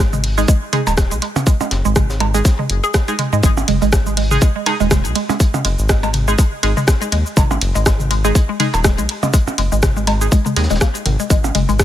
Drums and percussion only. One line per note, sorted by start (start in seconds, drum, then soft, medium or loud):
0.00 closed hi-hat medium
0.13 high tom soft
0.13 cabasa soft
0.24 closed hi-hat loud
0.24 open hi-hat medium
0.38 cabasa soft
0.48 kick loud
0.48 closed hi-hat medium
0.48 cabasa medium
0.73 closed hi-hat medium
0.73 closed hi-hat loud
0.73 high tom soft
0.87 closed hi-hat soft
0.87 percussion blips medium
0.87 cabasa soft
0.97 kick loud
0.97 cross-stick medium
0.97 snare loud
0.97 closed hi-hat loud
0.97 cabasa medium
1.11 closed hi-hat soft
1.11 cabasa soft
1.22 closed hi-hat medium
1.22 closed hi-hat loud
1.36 closed hi-hat soft
1.36 high tom soft
1.36 percussion blips loud
1.36 cabasa soft
1.46 kick loud
1.46 closed hi-hat medium
1.46 cabasa medium
1.61 percussion blips medium
1.61 cabasa soft
1.71 snare loud
1.71 closed hi-hat loud
1.71 closed hi-hat medium
1.85 cabasa soft
1.96 kick loud
1.96 cross-stick medium
1.96 closed hi-hat medium
1.96 high tom soft
1.96 cabasa medium
2.10 snare loud
2.10 closed hi-hat medium
2.10 cabasa soft
2.20 closed hi-hat medium
2.20 percussion blips medium
2.34 closed hi-hat medium
2.34 cabasa soft
2.45 kick loud
2.45 snare loud
2.45 closed hi-hat soft
2.45 closed hi-hat medium
2.45 cabasa medium
2.59 high tom soft
2.69 closed hi-hat medium
2.69 closed hi-hat loud
2.84 cabasa soft
2.94 kick loud
2.94 cross-stick medium
2.94 snare loud
2.94 closed hi-hat loud
2.94 cabasa medium
3.08 closed hi-hat soft
3.08 cabasa soft
3.19 closed hi-hat medium
3.19 closed hi-hat loud
3.19 high tom soft
3.33 cabasa soft
3.43 kick loud
3.43 closed hi-hat medium
3.43 cabasa medium
3.57 percussion blips medium
3.57 cabasa soft
3.68 closed hi-hat medium
3.68 high tom soft
3.68 ride medium
3.82 closed hi-hat soft
3.82 cabasa soft
3.93 kick loud
3.93 cross-stick medium
3.93 snare loud
3.93 closed hi-hat medium
3.93 cabasa medium
4.06 cabasa soft
4.17 closed hi-hat medium
4.17 open hi-hat medium
4.17 ride medium
4.31 high tom soft
4.31 cabasa soft
4.41 kick loud
4.41 closed hi-hat medium
4.41 cabasa medium
4.66 closed hi-hat medium
4.66 ride medium
4.66 percussion blips medium
4.80 closed hi-hat soft
4.80 cabasa soft
4.91 kick loud
4.91 cross-stick medium
4.91 snare loud
4.91 closed hi-hat medium
4.91 high tom soft
4.91 cabasa medium
5.05 closed hi-hat soft
5.05 cabasa soft
5.15 closed hi-hat medium
5.15 closed hi-hat loud
5.15 ride medium
5.29 closed hi-hat soft
5.29 percussion blips medium
5.29 cabasa soft
5.40 kick loud
5.40 closed hi-hat medium
5.40 cabasa medium
5.54 high tom soft
5.54 percussion blips medium
5.54 cabasa soft
5.65 closed hi-hat medium
5.65 ride medium
5.79 cabasa soft
5.89 kick loud
5.89 cross-stick medium
5.89 snare loud
5.89 closed hi-hat medium
5.89 cabasa medium
6.03 percussion blips medium
6.03 cabasa soft
6.13 closed hi-hat medium
6.13 high tom soft
6.13 ride medium
6.28 cabasa soft
6.38 kick loud
6.38 closed hi-hat medium
6.38 cabasa medium
6.63 closed hi-hat medium
6.63 ride medium
6.77 high tom soft
6.77 cabasa soft
6.87 kick loud
6.87 cross-stick medium
6.87 snare loud
6.87 closed hi-hat loud
6.87 cabasa medium
7.02 closed hi-hat soft
7.02 cabasa soft
7.12 closed hi-hat medium
7.12 ride medium
7.26 cabasa soft
7.37 kick loud
7.37 closed hi-hat medium
7.37 high tom soft
7.37 percussion blips medium
7.37 cabasa medium
7.51 percussion blips medium
7.51 cabasa soft
7.61 closed hi-hat medium
7.61 ride medium
7.75 closed hi-hat soft
7.75 cabasa soft
7.86 kick loud
7.86 cross-stick medium
7.86 snare loud
7.86 closed hi-hat medium
7.86 cabasa medium
8.00 high tom soft
8.00 cabasa soft
8.11 closed hi-hat medium
8.11 ride medium
8.25 closed hi-hat soft
8.25 cabasa soft
8.35 kick loud
8.35 closed hi-hat medium
8.35 cabasa medium
8.60 closed hi-hat medium
8.60 high tom soft
8.60 ride medium
8.74 closed hi-hat soft
8.74 percussion blips medium
8.74 cabasa soft
8.84 kick loud
8.84 cross-stick medium
8.84 snare loud
8.84 closed hi-hat medium
8.84 cabasa medium
8.98 closed hi-hat soft
8.98 cabasa soft
9.09 closed hi-hat medium
9.09 ride medium
9.23 high tom soft
9.23 percussion blips medium
9.23 cabasa soft
9.34 kick loud
9.34 closed hi-hat medium
9.34 cabasa medium
9.47 percussion blips medium
9.47 cabasa soft
9.58 closed hi-hat medium
9.58 ride medium
9.72 cabasa soft
9.83 kick loud
9.83 cross-stick medium
9.83 snare loud
9.83 closed hi-hat medium
9.83 high tom soft
9.83 cabasa medium
9.97 cabasa soft
10.07 closed hi-hat medium
10.07 ride medium
10.07 percussion blips medium
10.21 cabasa soft
10.31 kick loud
10.31 closed hi-hat medium
10.31 cabasa medium
10.46 high tom soft
10.46 cabasa soft
10.56 snare medium
10.56 closed hi-hat medium
10.56 ride medium
10.64 snare medium
10.64 closed hi-hat medium
10.70 snare medium
10.70 closed hi-hat medium
10.70 cabasa soft
10.75 snare medium
10.75 closed hi-hat medium
10.81 kick loud
10.81 cross-stick medium
10.81 snare loud
10.81 cabasa medium
10.95 closed hi-hat soft
10.95 cabasa soft
11.06 closed hi-hat medium
11.06 high tom soft
11.06 ride medium
11.20 cabasa soft
11.30 kick loud
11.30 closed hi-hat loud
11.30 cabasa medium
11.44 percussion blips medium
11.44 cabasa soft
11.55 closed hi-hat medium
11.55 high tom soft
11.55 ride medium
11.69 closed hi-hat soft
11.69 cabasa soft
11.79 kick loud
11.79 cross-stick loud
11.79 snare loud
11.79 closed hi-hat medium
11.79 cabasa medium